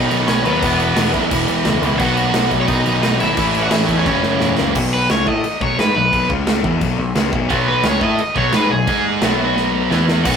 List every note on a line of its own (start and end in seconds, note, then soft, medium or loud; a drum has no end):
0.00 0.45 B2 loud
0.00 0.61 D#3 medium
0.00 0.45 F#3 loud
0.00 0.45 B3 loud
0.00 0.26 D#4 medium
0.00 0.63 D#4 loud
0.00 0.27 D#5 medium
0.11 0.26 B1 medium
0.11 crash medium
0.27 0.43 B1 medium
0.27 0.44 C#4 medium
0.27 0.44 C#5 medium
0.27 snare loud
0.27 crash medium
0.44 0.60 D#2 medium
0.44 0.62 F#3 medium
0.44 2.02 B3 medium
0.44 1.10 B3 medium
0.44 1.13 B4 medium
0.44 crash medium
0.48 0.62 B2 medium
0.62 0.93 E1 loud
0.62 1.81 E2 loud
0.62 1.82 B2 loud
0.62 1.81 E3 loud
0.62 1.99 G#3 loud
0.62 2.00 B3 loud
0.62 2.00 E4 loud
0.62 kick loud
0.62 crash loud
0.80 crash medium
0.96 1.12 E1 medium
0.96 snare loud
0.96 crash loud
1.14 1.29 B1 medium
1.14 kick medium
1.14 crash medium
1.31 1.46 E1 medium
1.31 kick loud
1.31 crash medium
1.48 1.63 E1 medium
1.48 crash medium
1.65 1.80 C#2 medium
1.65 snare loud
1.65 crash medium
1.82 1.98 C#2 loud
1.82 2.00 E2 medium
1.82 1.98 B2 medium
1.82 1.99 E3 medium
1.82 crash medium
1.99 2.30 B1 loud
1.99 3.19 B2 loud
1.99 3.36 D#3 medium
1.99 3.20 F#3 loud
1.99 3.18 B3 loud
1.99 3.38 D#4 loud
1.99 2.48 F#4 medium
1.99 2.47 F#5 loud
1.99 kick loud
1.99 crash medium
2.17 crash medium
2.34 2.49 B1 medium
2.34 snare loud
2.34 crash medium
2.51 2.66 B1 medium
2.51 kick medium
2.51 crash medium
2.61 2.67 C#5 medium
2.68 2.84 B1 loud
2.68 3.01 D#4 medium
2.68 3.00 D#5 loud
2.68 kick loud
2.68 crash medium
2.86 3.01 B1 medium
2.86 crash medium
3.03 3.19 B1 medium
3.03 3.19 D#4 medium
3.03 3.20 D#5 medium
3.03 snare loud
3.03 crash medium
3.19 3.36 G#1 medium
3.19 3.36 B2 medium
3.19 3.37 F#3 medium
3.19 3.36 B3 medium
3.19 3.60 E4 medium
3.19 3.60 E5 loud
3.19 crash medium
3.37 3.68 A1 loud
3.37 4.05 A2 medium
3.37 4.06 E3 loud
3.37 4.07 A3 loud
3.37 4.06 C#4 loud
3.37 4.06 E4 loud
3.37 kick loud
3.37 crash loud
3.55 crash medium
3.63 3.68 F#4 medium
3.63 3.67 F#5 loud
3.71 3.87 A1 medium
3.71 3.96 E4 medium
3.71 3.98 E5 medium
3.71 snare loud
3.71 crash loud
3.89 4.04 E2 medium
3.89 kick medium
3.89 crash medium
3.97 4.05 C#4 medium
3.97 4.06 C#5 medium
4.06 4.21 F#1 medium
4.06 4.74 F#2 medium
4.06 4.75 C#3 loud
4.06 4.74 E3 medium
4.06 4.75 F#3 loud
4.06 4.75 A#3 loud
4.06 4.55 C#4 medium
4.06 4.75 E4 loud
4.06 4.55 C#5 medium
4.06 kick loud
4.06 snare medium
4.23 4.39 F#1 medium
4.23 snare medium
4.40 4.56 E1 medium
4.40 snare medium
4.58 4.74 C#2 medium
4.58 snare loud
4.75 5.07 B1 loud
4.75 5.09 B2 medium
4.75 5.10 F#3 loud
4.75 5.10 B3 loud
4.75 kick loud
4.75 crash loud
4.75 crash medium
4.94 5.10 B4 loud
5.10 5.26 C#2 loud
5.10 5.27 C#3 medium
5.10 5.26 G#3 loud
5.10 5.27 C#4 loud
5.10 5.27 C#5 medium
5.10 snare loud
5.10 crash medium
5.27 5.43 A2 medium
5.27 5.43 A3 loud
5.27 5.44 E4 loud
5.27 5.44 A4 loud
5.27 5.61 D#5 loud
5.27 kick loud
5.44 muted distorted electric guitar stroke medium
5.44 muted picked electric bass stroke soft
5.44 crash medium
5.61 5.77 B1 medium
5.61 5.78 B2 medium
5.61 5.77 F#3 loud
5.61 5.78 B3 loud
5.61 5.78 C#5 medium
5.61 kick loud
5.78 5.95 G#2 medium
5.78 5.95 G#3 medium
5.78 5.95 D#4 loud
5.78 5.95 G#4 loud
5.78 5.95 B4 medium
5.78 snare loud
5.78 crash medium
5.96 6.12 B1 medium
5.96 6.09 B2 medium
5.96 6.10 F#3 medium
5.96 6.29 B4 medium
6.12 6.29 B1 loud
6.12 6.29 B2 loud
6.12 6.30 F#3 loud
6.12 6.30 B3 loud
6.12 kick loud
6.12 crash medium
6.30 6.62 C#2 loud
6.30 6.64 C#3 loud
6.30 6.64 G#3 medium
6.30 6.64 C#4 loud
6.30 kick loud
6.47 snare loud
6.47 crash medium
6.64 6.80 E2 loud
6.64 6.81 E3 loud
6.64 6.81 B3 loud
6.64 6.81 E4 loud
6.64 kick loud
6.81 6.97 B1 medium
6.81 6.97 B2 loud
6.81 6.98 F#3 loud
6.81 6.99 B3 loud
6.81 kick loud
6.81 crash medium
6.98 7.15 B1 medium
6.98 7.12 B2 medium
6.98 7.13 F#3 medium
7.15 7.32 C#2 medium
7.15 7.32 C#3 medium
7.15 7.32 G#3 loud
7.15 7.32 C#4 loud
7.15 snare loud
7.15 crash medium
7.32 7.49 B1 loud
7.32 7.48 B2 medium
7.32 7.49 F#3 loud
7.32 7.50 B3 loud
7.32 kick loud
7.49 7.82 B1 loud
7.49 7.84 B2 loud
7.49 7.84 F#3 loud
7.49 7.85 B3 loud
7.49 kick loud
7.49 crash medium
7.68 7.85 B4 medium
7.83 8.00 C#2 medium
7.83 8.01 C#3 loud
7.83 8.01 G#3 loud
7.83 8.02 C#4 loud
7.83 8.02 C#5 loud
7.83 snare loud
7.83 crash medium
8.01 8.17 A2 loud
8.01 8.18 A3 loud
8.01 8.19 E4 loud
8.01 8.19 A4 loud
8.01 8.36 D#5 loud
8.01 kick loud
8.18 muted overdriven electric guitar stroke medium
8.18 muted picked electric bass stroke soft
8.18 muted distorted electric guitar stroke medium
8.18 crash medium
8.36 8.52 B1 medium
8.36 8.53 B2 loud
8.36 8.53 F#3 loud
8.36 8.54 B3 loud
8.36 8.53 C#5 medium
8.36 kick loud
8.52 8.69 G#2 medium
8.52 8.70 G#3 medium
8.52 8.71 D#4 loud
8.52 8.71 G#4 loud
8.52 8.71 B4 medium
8.52 snare loud
8.52 crash medium
8.70 8.86 B1 medium
8.70 8.85 B2 medium
8.70 8.85 F#3 medium
8.70 9.04 G#4 loud
8.87 9.19 G#2 loud
8.87 9.22 G#3 loud
8.87 9.22 D#4 loud
8.87 9.22 G#4 loud
8.87 kick loud
8.87 crash medium
9.22 9.87 B1 loud
9.22 9.91 B2 loud
9.22 9.91 F#3 loud
9.22 9.91 B3 loud
9.22 snare loud
9.22 crash medium
9.57 snare medium
9.90 10.22 E2 medium
9.90 10.24 E3 loud
9.90 10.25 B3 loud
9.90 10.25 E4 loud
9.90 snare medium
10.08 snare loud
10.25 10.37 B1 loud
10.25 10.37 B2 medium
10.25 10.37 D#3 medium
10.25 10.37 F#3 loud
10.25 10.37 B3 loud
10.25 10.37 D#4 loud
10.25 10.37 F#4 medium
10.25 10.37 F#5 loud
10.25 kick loud
10.25 crash loud
10.25 crash medium